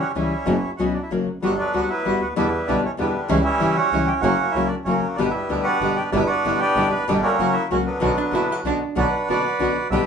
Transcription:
Already playing: G3 C#4
0.01 F#4
0.15 C#2 C#3 E3 G3 C#4 E4
0.20 E4
0.46 F#1 B2 F#3 B3 C#4 F#4
0.77 C#2 B2 F#3 B3 C#4 F#4
0.84 E4
0.94 D4
1.02 E4
1.11 F#1 C#3 F#3 A#3 C#4 F#4
1.27 F1
1.42 G1 D3 F#3 G3 B3 F#4
1.58 F#3 B3 D4
1.73 D2 G3 B3 F#4
1.83 F#4
1.89 B3 E4
2.05 G1 G3 B3 F#4
2.21 D2 F#4
2.36 E2 B2 D3 G3 B3 D4 E4
2.67 B1 B2 D3 G3 B3 D4 E4
2.85 C#4
2.97 E2 B2 D3 G3 B3 D4 E4
3.28 C#2 C#3 E3 G3 C#4 E4
3.44 G3 C#4 E4
3.60 G1 C#3 E3 G3 C#4 E4
3.76 C#4 F#4
3.92 C#2 C#3 E3 G3 C#4 E4
4.07 G4
4.21 F#1 C#3 F#3 A#3 C#4 F#4
4.51 C#2 F#3 A#3 C#4 E4
4.56 C#3 F#3 A#3 C#4 F#4
4.67 D4
4.84 F#1 C#3 F#3 A#3 C#4 F#4
5.01 F1
5.16 G1 B2 D3 G3 B3 D4 G4
5.20 D4
5.30 G3 E4
5.34 B3
5.49 D2 B2 D3 G3 B3 D4 G4
5.64 B3 D4 F#4
5.80 G1 B2 D3 G3 B3 D4 G4
5.96 G4
6.12 G1 B2 D3 G3 B3 D4 E4
6.26 B3 D4 F#4
6.45 G1 B2 D3 G3 B3 D4 E4
6.59 B3 D4 G4
6.75 G1 B2 D3 G3 B3 D4 E4
6.90 F1 B4
7.07 G1 B2 D3 G3 B3 D4 G4
7.23 F#3 A#3 C#4
7.39 F#1 C#3 F#3 A#3 C#4 F#4
7.52 E4
7.70 C#2 C#3 F#3 A#3 C#4 F#4
7.86 D3 F#3 B3
8.00 B1 B2 D3 B3 D4 F#4
8.18 D4
8.31 F#1 B2 D3 B3 D4 E4 F#4
8.52 F#4
8.64 B1 B2 D3 B3 D4 F#4
8.95 B1 B2 D3 B3 D4 F#4 B4
9.29 F#1 B2 D3 B3 D4 F#4 B4 D5
9.59 B1 B2 D3 B3 D4 F#4
9.91 B1 B2 D3 G3 B3 D4 G4 B4 E5

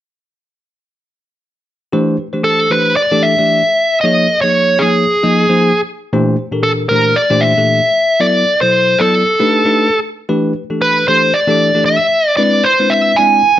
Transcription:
1.93 E3 A3 D4 G4 C5
2.19 G4 B4
2.33 E3 A3 D4 G4 C5
2.44 A4
2.70 E3 A3 D4 G4 B4 C5
2.96 G4 C5 D5
3.12 E3 A3 D4 G4 A4
3.23 E5
3.38 E3 A3 D4 G4 D5
3.66 G4 A4
4.01 F3 A#3 D#4 G#4 C#5 D#5
4.30 G#4 A#4
4.41 F3 A#3 D#4 G#4 C#5
4.79 F3 A#3 D#4 G#4 C#5
5.08 G#4 C5
5.23 F3 A#3 D#4 G#4 D#5
5.49 F3 A#3 D#4 G#4 C5
5.76 G#4 C5
6.13 A#2 E3 A3 D4 G4 C5
6.39 G4 C5
6.52 A#2 E3 D4 G4 A4 A#4
6.63 A4
6.89 A#2 E3 A3 D4 G4 A#4 C5
7.16 D5
7.30 A#2 E3 A3 D4 G4 C5
7.41 E5
7.58 A#2 E3 A3 D4 G4 A4
8.20 F#3 B3 E4 A4 D5
8.46 A4 E5
8.61 B2 F#3 E4 A4 C5
8.99 F#3 B3 E4 A4 D5
9.28 G4
9.40 A3 D4 D#4 G4 B4
9.65 A3 D4 D#4 G4 B4
9.91 G4 A4
10.29 E3 A3 D4 G4 B4
10.56 G4 B4
10.70 E3 A3 D4 G4 A4
10.82 B4
11.08 E3 A3 D4 G4 A4 C5
11.34 G4 B4 D5
11.47 E3 A3 D4 G4 A4
11.75 E3 A3 D4 G4 A4
11.86 E5
12.01 G4 B4
12.37 G#3 C4 D4 E4 B4 D5
12.64 E4 B4 C5
12.80 G#3 C4 D4 E4 B4
12.90 E5
13.16 G#3 C4 D4 E4 D5 G#5
13.43 E4 B4

